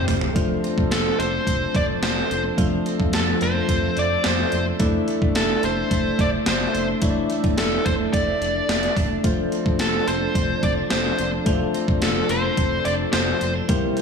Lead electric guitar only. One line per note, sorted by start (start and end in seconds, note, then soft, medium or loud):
0.92 1.17 A4 medium
1.20 1.76 C5 medium
1.76 1.83 D5 loud
2.03 2.42 C5 medium
3.15 3.22 A4 medium
3.43 3.99 C5 medium
3.99 4.26 D5 medium
4.26 4.64 C5 medium
5.36 5.64 A4 medium
5.65 6.21 C5 medium
6.21 6.28 D5 loud
6.48 6.86 C5 medium
7.58 7.85 A4 medium
7.86 7.93 C5 medium
8.13 8.93 D5 loud
9.81 10.08 A4 medium
10.08 10.65 C5 medium
10.64 10.71 D5 loud
10.91 11.30 C5 medium
12.04 12.30 A4 medium
12.30 12.87 C5 medium
12.85 12.93 D5 loud
13.13 13.52 C5 medium